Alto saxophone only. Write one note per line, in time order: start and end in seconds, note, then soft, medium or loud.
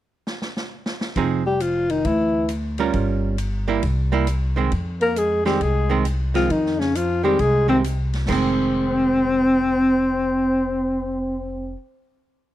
1.47 1.63 G4 medium
1.62 1.93 F4 medium
1.91 2.08 D#4 medium
2.06 2.50 E4 medium
5.02 5.20 A#4 medium
5.19 5.45 G#4 medium
5.46 5.64 G4 medium
5.63 6.06 G#4 medium
6.36 6.54 F4 medium
6.52 6.81 D#4 medium
6.80 6.98 C#4 medium
6.96 7.24 F4 medium
7.24 7.42 G4 medium
7.40 7.69 G#4 medium
7.69 7.78 C4 medium
8.30 11.74 C4 medium